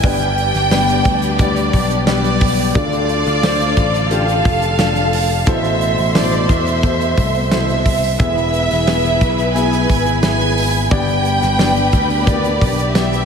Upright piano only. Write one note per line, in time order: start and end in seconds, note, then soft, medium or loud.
0.04 1.02 G2 medium
0.04 0.55 G3 medium
0.04 0.55 B3 medium
0.04 0.55 D4 medium
0.04 0.55 B4 medium
0.72 1.23 G3 medium
0.72 1.23 B3 medium
0.72 1.23 D4 medium
0.72 1.23 B4 medium
1.40 1.91 G3 medium
1.40 1.91 B3 medium
1.40 1.91 D4 medium
1.40 1.91 D5 medium
2.07 2.58 G3 medium
2.07 2.59 B3 medium
2.07 2.59 D4 medium
2.07 2.59 B4 medium
2.75 3.73 D3 medium
2.75 3.26 A3 medium
2.75 3.27 D4 medium
2.75 3.27 F4 medium
2.75 3.27 D5 loud
3.43 3.95 A3 medium
3.43 3.94 D4 medium
3.43 3.95 F4 medium
3.43 3.95 C5 medium
4.11 4.62 A3 medium
4.11 4.62 D4 medium
4.11 4.62 F4 medium
4.11 4.63 G4 medium
4.79 5.30 A3 medium
4.79 5.30 D4 medium
4.79 5.30 F4 medium
4.79 5.31 F5 medium
5.47 6.45 A2 medium
5.47 5.98 B2 medium
5.47 5.99 E4 medium
5.47 5.99 A4 medium
5.47 5.99 C5 medium
6.15 6.66 B2 medium
6.15 6.66 E4 medium
6.15 6.67 A4 medium
6.15 6.67 C5 medium
6.83 7.34 B2 medium
6.83 7.35 E4 medium
6.83 7.35 A4 medium
6.83 7.35 C5 medium
7.51 8.02 B2 medium
7.51 8.03 E4 medium
7.51 8.03 A4 medium
7.51 8.03 C5 medium
8.18 9.17 E3 medium
8.18 8.70 B3 medium
8.18 8.70 E4 medium
8.18 8.70 G#4 medium
8.18 8.70 E5 loud
8.87 9.38 B3 medium
8.87 9.38 E4 medium
8.87 9.38 G#4 medium
8.87 9.39 E5 medium
9.55 10.06 B3 medium
9.55 10.06 E4 medium
9.55 10.07 G#4 medium
9.55 10.07 E5 medium
10.23 10.74 B3 medium
10.23 10.74 E4 medium
10.23 10.74 G#4 medium
10.23 10.75 E5 medium
10.91 11.89 G2 medium
10.91 11.42 B3 medium
10.91 11.43 D4 medium
10.91 11.43 G4 medium
10.91 11.43 D5 loud
11.59 12.10 B3 medium
11.59 12.10 D4 medium
11.59 12.10 G4 medium
11.59 12.11 D5 medium
12.27 12.34 A#3 medium
12.27 12.78 D4 medium
12.27 12.78 G4 medium
12.27 12.79 D5 medium
12.34 12.82 B3 medium
12.95 13.25 B3 medium
12.95 13.25 D4 medium
12.95 13.25 G4 medium
12.95 13.25 D5 medium